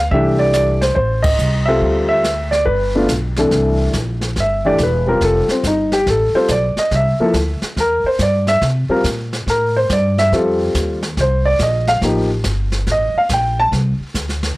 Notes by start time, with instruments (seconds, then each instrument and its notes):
Already playing: grand piano F5
0.11 upright bass C2, grand piano E3 A3 D4 G4 E5, brush sweep, kick
0.39 grand piano D5
0.53 grand piano D5, snare, hi-hat pedal
0.81 grand piano C5, snare
0.95 upright bass A1, grand piano C5, brush sweep, kick
1.22 grand piano D#5, kick, ride
1.38 upright bass C2, hi-hat pedal
1.65 grand piano G3 C4 F4 A4 E5
1.82 upright bass D2, brush sweep, kick
2.08 grand piano E5
2.24 snare, hi-hat pedal
2.51 grand piano D5, snare
2.66 upright bass G1, grand piano B4, brush sweep, kick
2.95 grand piano A3 B3 D4 F4
3.08 upright bass B1, snare, hi-hat pedal
3.36 grand piano C2 E3 A3 D4 A4, snare
3.51 upright bass C2, brush sweep, kick, snare
3.93 upright bass A#1, kick, snare, hi-hat pedal
4.21 snare
4.36 upright bass G1, brush sweep, kick, snare
4.40 grand piano E5
4.65 grand piano E3 A3 D4 G4 D5
4.78 upright bass E1, kick, snare, hi-hat pedal
4.83 grand piano B4
5.06 grand piano G3 C4 F4 G4 A#4
5.21 upright bass F1, grand piano A4, brush sweep, kick, snare
5.49 grand piano C4, snare
5.63 upright bass G1, grand piano D#4, kick, snare, hi-hat pedal
5.92 grand piano G4, snare
6.06 upright bass A1, grand piano A4, brush sweep, kick, snare
6.33 grand piano G3 C4 F4 A4 C5, muted upright bass stroke
6.48 upright bass B1, grand piano D5, kick, snare, hi-hat pedal
6.76 grand piano D#5, muted upright bass stroke, snare
6.91 upright bass C2, brush sweep, kick, snare
6.95 grand piano E5
7.19 grand piano F3 A#3 E4 A4, muted upright bass stroke
7.34 upright bass D2, kick, snare, hi-hat pedal
7.62 muted upright bass stroke, snare
7.76 upright bass E2, grand piano A#4, brush sweep, kick, snare
8.04 grand piano C5, muted upright bass stroke
8.19 upright bass G2, grand piano D5, kick, snare, hi-hat pedal
8.47 grand piano E5, snare
8.61 upright bass C3, brush sweep, kick, snare
8.89 grand piano G3 C4 F4 A#4, muted upright bass stroke
9.04 upright bass A#2, kick, snare, hi-hat pedal
9.33 snare
9.46 upright bass A2, grand piano A#4, brush sweep, kick, snare
9.76 grand piano C5
9.89 upright bass G2, grand piano D5, kick, snare, hi-hat pedal
10.18 grand piano E5, snare
10.32 upright bass F2, grand piano G3 C4 F4 A4, brush sweep, kick, snare
10.75 upright bass D#2, kick, snare, hi-hat pedal
11.03 snare
11.17 upright bass C2, grand piano C5, brush sweep, kick, snare
11.46 grand piano D5
11.59 upright bass A#1, grand piano D#5, kick, snare, hi-hat pedal
11.87 grand piano F5, snare
12.02 upright bass A1, grand piano F3 A#3 D#4 G4, brush sweep, kick, snare
12.44 upright bass G1, kick, snare, hi-hat pedal
12.72 snare
12.87 upright bass A1, brush sweep, kick, snare
12.91 grand piano D#5
13.14 grand piano F5, muted upright bass stroke
13.29 upright bass A#1, kick, snare, hi-hat pedal
13.33 grand piano G5
13.60 grand piano A5
13.72 upright bass C2, brush sweep, kick, snare
14.00 muted upright bass stroke
14.14 upright bass D2, kick, snare, hi-hat pedal
14.29 snare
14.43 snare